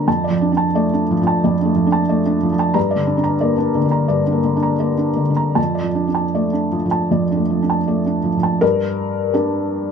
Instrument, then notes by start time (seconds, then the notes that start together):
felt piano
0.08 F2 A5
0.24 D5
0.30 F3
0.41 D4
0.52 D4
0.57 A5
0.75 A3 D5
0.93 D4
1.11 F3
1.22 F3
1.27 A5
1.44 F2 D5
1.61 A3 D4
1.75 F3
1.87 D4
1.92 A5
2.09 A3 D5
2.26 D4
2.43 F3
2.52 F3
2.59 A5
2.74 G2 A#5
2.91 D5
2.96 D3
3.07 D4
3.17 D4
3.24 A#5
3.41 A#3 D5
3.58 D4
3.75 D3
3.85 D3
3.91 A#5
4.08 G2 D5
4.26 D4
4.32 A#3
4.44 D3
4.56 D4
4.63 A#5
4.80 A#3 D5
4.98 D4
5.16 D3
5.30 D3
5.37 A#5
5.55 F2 A5
5.75 D5
5.82 F3
5.95 D4
6.08 D4
6.15 A5
6.35 A3 D5
6.53 D4
6.72 F3
6.86 F3
6.91 A5
7.11 F2 D5
7.31 D4
7.37 A3
7.49 F3
7.62 D4
7.70 A5
7.88 A3 D5
8.06 D4
8.24 F3
8.37 F3
8.43 A5
8.61 G2 A#4
9.33 G3 D4 A#4